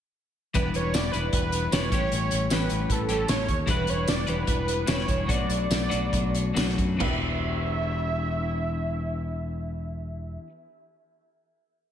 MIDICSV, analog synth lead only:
0, 0, Header, 1, 2, 480
1, 0, Start_track
1, 0, Tempo, 390625
1, 678, Time_signature, 4, 2, 24, 8
1, 5000, Tempo, 404858
1, 6920, Tempo, 437318
1, 8360, Tempo, 456274
1, 13532, End_track
2, 0, Start_track
2, 0, Title_t, "Analog synth lead"
2, 0, Program_c, 0, 81
2, 671, Note_on_c, 0, 71, 85
2, 930, Note_on_c, 0, 73, 91
2, 948, Note_off_c, 0, 71, 0
2, 1149, Note_on_c, 0, 74, 99
2, 1167, Note_off_c, 0, 73, 0
2, 1373, Note_on_c, 0, 71, 88
2, 1391, Note_off_c, 0, 74, 0
2, 1625, Note_off_c, 0, 71, 0
2, 1640, Note_on_c, 0, 71, 92
2, 2115, Note_on_c, 0, 73, 96
2, 2134, Note_off_c, 0, 71, 0
2, 2346, Note_off_c, 0, 73, 0
2, 2353, Note_on_c, 0, 73, 102
2, 3100, Note_on_c, 0, 71, 88
2, 3118, Note_off_c, 0, 73, 0
2, 3583, Note_on_c, 0, 69, 79
2, 3602, Note_off_c, 0, 71, 0
2, 3811, Note_off_c, 0, 69, 0
2, 3834, Note_on_c, 0, 69, 81
2, 4041, Note_on_c, 0, 73, 93
2, 4059, Note_off_c, 0, 69, 0
2, 4400, Note_off_c, 0, 73, 0
2, 4550, Note_on_c, 0, 71, 87
2, 4788, Note_on_c, 0, 73, 88
2, 4806, Note_off_c, 0, 71, 0
2, 5025, Note_on_c, 0, 74, 88
2, 5042, Note_off_c, 0, 73, 0
2, 5263, Note_on_c, 0, 71, 83
2, 5281, Note_off_c, 0, 74, 0
2, 5484, Note_off_c, 0, 71, 0
2, 5496, Note_on_c, 0, 71, 83
2, 5964, Note_on_c, 0, 73, 88
2, 5982, Note_off_c, 0, 71, 0
2, 6461, Note_on_c, 0, 74, 90
2, 6479, Note_off_c, 0, 73, 0
2, 6936, Note_off_c, 0, 74, 0
2, 6976, Note_on_c, 0, 74, 85
2, 7609, Note_off_c, 0, 74, 0
2, 8377, Note_on_c, 0, 76, 85
2, 11907, Note_off_c, 0, 76, 0
2, 13532, End_track
0, 0, End_of_file